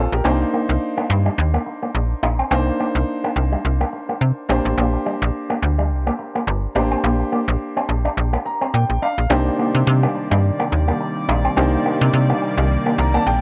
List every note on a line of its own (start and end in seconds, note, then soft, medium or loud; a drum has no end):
0.00 0.12 F4 medium
0.00 0.12 A4 medium
0.12 0.21 A#1 medium
0.12 0.40 G4 medium
0.12 0.39 A#4 medium
0.24 0.44 C2 medium
0.24 2.47 A#3 medium
0.24 0.34 C4 medium
0.24 2.47 D4 medium
0.24 2.47 D#4 medium
0.24 2.48 C5 medium
0.41 muted clean electric guitar stroke soft
0.53 0.62 A#3 medium
0.69 0.78 C2 loud
0.97 1.04 A#3 medium
1.10 1.29 G2 loud
1.10 muted clean electric guitar stroke soft
1.26 1.33 G3 medium
1.38 1.58 D#2 loud
1.54 1.61 A#3 medium
1.66 muted clean electric guitar stroke soft
1.82 1.89 A#3 medium
1.95 2.14 A#1 medium
1.95 muted clean electric guitar stroke soft
2.23 2.43 A#1 medium
2.23 2.32 D#4 medium
2.39 2.46 C4 medium
2.51 2.71 C2 loud
2.51 4.45 A#3 medium
2.51 2.60 C4 loud
2.51 4.45 D4 medium
2.51 4.46 D#4 medium
2.51 4.46 C5 loud
2.67 muted clean electric guitar stroke soft
2.80 2.89 A#3 medium
2.95 3.04 C2 loud
3.24 3.31 A#3 medium
3.36 3.56 C2 medium
3.36 muted clean electric guitar stroke soft
3.52 3.59 G3 medium
3.65 3.84 C2 medium
3.81 3.88 A#3 medium
3.93 muted clean electric guitar stroke soft
4.09 4.16 A#3 medium
4.21 4.32 C3 medium
4.49 4.60 A#1 loud
4.49 6.71 A#3 medium
4.49 4.58 C4 medium
4.49 6.72 D4 medium
4.49 6.72 G4 medium
4.49 6.72 C5 medium
4.65 4.74 A1 medium
4.78 4.97 A#1 loud
4.78 4.87 A#3 medium
4.94 muted clean electric guitar stroke soft
5.06 5.15 G3 medium
5.22 5.31 A#1 loud
5.50 5.57 A#3 medium
5.62 5.92 D2 loud
5.62 muted clean electric guitar stroke soft
5.78 5.85 G3 medium
5.91 6.10 C2 loud
6.07 6.14 A#3 medium
6.19 muted clean electric guitar stroke soft
6.35 6.42 A#3 medium
6.47 6.67 G1 loud
6.47 muted clean electric guitar stroke medium
6.75 6.95 A1 medium
6.75 8.98 A#3 medium
6.75 6.84 D4 medium
6.75 8.98 D4 medium
6.75 8.98 G4 medium
6.75 8.99 C5 medium
6.91 6.98 C4 medium
7.04 7.23 A#1 loud
7.04 7.13 A#3 loud
7.20 muted clean electric guitar stroke soft
7.32 7.41 A#3 medium
7.48 7.57 A#1 loud
7.76 7.83 C4 medium
7.89 8.08 A#1 medium
7.89 muted clean electric guitar stroke soft
8.05 8.12 D4 medium
8.17 8.37 A#1 loud
8.33 8.40 A#3 medium
8.46 8.72 A#5 medium
8.46 muted clean electric guitar stroke soft
8.61 8.68 C4 medium
8.74 8.85 A#2 medium
8.74 9.00 G5 medium
8.90 8.98 A#1 medium
9.02 9.11 D4 medium
9.02 9.29 F5 medium
9.18 9.27 A#1 medium
9.30 9.50 C2 loud
9.30 13.41 C3 medium
9.30 13.41 D#3 medium
9.30 13.41 G3 medium
9.30 11.52 A#3 medium
9.30 13.41 A#3 medium
9.30 9.39 C4 loud
9.30 11.53 D4 medium
9.30 11.53 D#4 medium
9.30 11.53 G4 medium
9.30 11.53 C5 medium
9.30 13.41 D5 medium
9.47 muted clean electric guitar stroke soft
9.59 9.68 A#3 medium
9.75 9.83 C3 loud
9.87 10.07 C3 loud
10.03 10.10 A#3 medium
10.15 muted clean electric guitar stroke soft
10.31 10.51 G2 loud
10.31 10.38 G3 medium
10.59 10.66 A#3 medium
10.72 10.92 D#2 medium
10.72 muted clean electric guitar stroke soft
10.88 10.95 A#3 medium
11.01 muted clean electric guitar stroke medium
11.29 11.48 A#1 medium
11.29 11.38 D#4 medium
11.45 11.52 C4 medium
11.56 11.77 C2 loud
11.56 13.41 A#3 medium
11.56 11.66 C4 medium
11.56 13.41 D4 medium
11.56 13.41 D#4 medium
11.56 13.41 G4 medium
11.56 13.41 C5 medium
11.73 muted clean electric guitar stroke medium
11.86 11.94 A#3 medium
12.01 12.10 C3 loud
12.13 12.33 C3 loud
12.29 12.36 A#3 medium
12.42 muted clean electric guitar stroke medium
12.57 12.77 C2 medium
12.57 12.65 G3 medium
12.86 12.93 A#3 medium
12.98 13.18 C2 medium
12.98 13.13 A#5 medium
12.98 muted clean electric guitar stroke soft
13.14 13.21 A#3 medium
13.14 13.26 A5 medium
13.26 13.41 A#1 medium
13.26 13.41 G5 medium